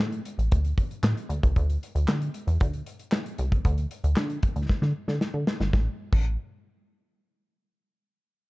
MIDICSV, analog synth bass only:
0, 0, Header, 1, 2, 480
1, 0, Start_track
1, 0, Tempo, 521739
1, 1438, Time_signature, 4, 2, 24, 8
1, 7812, End_track
2, 0, Start_track
2, 0, Title_t, "Analog synth bass"
2, 0, Program_c, 0, 38
2, 0, Note_on_c, 0, 45, 98
2, 191, Note_off_c, 0, 45, 0
2, 350, Note_on_c, 0, 33, 78
2, 451, Note_off_c, 0, 33, 0
2, 479, Note_on_c, 0, 38, 85
2, 675, Note_off_c, 0, 38, 0
2, 949, Note_on_c, 0, 45, 112
2, 1051, Note_off_c, 0, 45, 0
2, 1190, Note_on_c, 0, 38, 94
2, 1291, Note_off_c, 0, 38, 0
2, 1319, Note_on_c, 0, 36, 84
2, 1417, Note_off_c, 0, 36, 0
2, 1437, Note_on_c, 0, 38, 118
2, 1634, Note_off_c, 0, 38, 0
2, 1794, Note_on_c, 0, 38, 92
2, 1894, Note_off_c, 0, 38, 0
2, 1912, Note_on_c, 0, 50, 96
2, 2111, Note_off_c, 0, 50, 0
2, 2275, Note_on_c, 0, 40, 84
2, 2374, Note_off_c, 0, 40, 0
2, 2400, Note_on_c, 0, 38, 90
2, 2596, Note_off_c, 0, 38, 0
2, 3116, Note_on_c, 0, 36, 94
2, 3313, Note_off_c, 0, 36, 0
2, 3357, Note_on_c, 0, 38, 120
2, 3554, Note_off_c, 0, 38, 0
2, 3714, Note_on_c, 0, 38, 95
2, 3814, Note_off_c, 0, 38, 0
2, 3833, Note_on_c, 0, 50, 108
2, 4032, Note_off_c, 0, 50, 0
2, 4193, Note_on_c, 0, 38, 79
2, 4293, Note_off_c, 0, 38, 0
2, 4434, Note_on_c, 0, 50, 96
2, 4533, Note_off_c, 0, 50, 0
2, 4672, Note_on_c, 0, 50, 97
2, 4773, Note_off_c, 0, 50, 0
2, 4911, Note_on_c, 0, 50, 93
2, 5012, Note_off_c, 0, 50, 0
2, 5152, Note_on_c, 0, 31, 103
2, 5253, Note_off_c, 0, 31, 0
2, 5273, Note_on_c, 0, 33, 109
2, 5409, Note_off_c, 0, 33, 0
2, 5634, Note_on_c, 0, 33, 97
2, 5859, Note_off_c, 0, 33, 0
2, 7812, End_track
0, 0, End_of_file